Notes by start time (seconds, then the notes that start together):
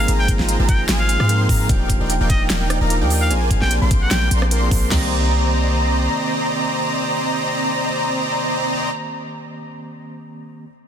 Already playing: F3 A#3 C4 D#4 F4 G#4 A#4
0.00 F5
0.07 G#1 F3 G#3 A#3 C4 D#4 G#4 C5 F5 A#5, closed hi-hat
0.19 G5
0.28 kick, closed hi-hat
0.37 G#1 F3 G#3 A#3 C4 D#4 G#4 C5 F5 A#5, snare
0.41 F4
0.49 closed hi-hat
0.59 G#1 G#3 G#4 C5 F5 A#5
0.69 G5, kick, closed hi-hat
0.89 G#1 G#3 G#4 C5 F5 G#5, snare, closed hi-hat
1.00 F5
1.09 closed hi-hat
1.20 G#2 G#3 G#4 C5 F5 C6, cross-stick
1.28 F3 A#3 C4 D#4 A#4, closed hi-hat
1.39 F3 A#3 C4 D#4 G#4
1.49 G#2 G#3 G#4 C5 F5 A#5, kick, open hi-hat
1.68 D#1 F3 A#3 D4 D#4 G4 A#4 D5 F5 G5, kick, closed hi-hat
1.90 kick, closed hi-hat
1.98 D#1 F3 A#3 D4 D#4 F4 A#4 D5 F5 G5
2.10 closed hi-hat
2.21 D#1 D#4 A#4 D5 F5 G5
2.30 D#5, kick, closed hi-hat
2.50 D#1 D#4 A#4 D5 F5 G5, snare, closed hi-hat
2.70 cross-stick, closed hi-hat
2.81 D#1 D#4 A#4 D5 F5 A#5
2.89 F3 A#3 D4 D#4 A#4, closed hi-hat
3.00 D#2 F3 A#3 D4 D#4 G4 A#4 D5 F5 G5
3.10 open hi-hat
3.21 F5
3.29 A#1 F3 A#3 C4 D4 G#4 A#4 C5 D5 G#5, closed hi-hat
3.51 kick, closed hi-hat
3.60 A#1 F3 A#3 C4 D4 A#4 C5 D5 G5 G#5, snare
3.64 G4
3.71 closed hi-hat
3.82 A#1 A#3 A#4 C5 D5 C6
3.91 kick, closed hi-hat
4.02 G5
4.11 A#1 A#3 A#4 C5 D5 G5, snare, closed hi-hat
4.31 A#1 A#3 A#4 C5 D5 C6, closed hi-hat
4.42 cross-stick
4.50 F3 A#3 C4 D4 A#4, closed hi-hat
4.61 F3 A#3 C4 D4 G#4
4.71 A#1 A#3 A#4 C5 D5 C6, kick, open hi-hat
4.88 C2 D#3 A#3 C4 C5 D5 D#5 A#5, snare, floor tom, crash
4.95 G4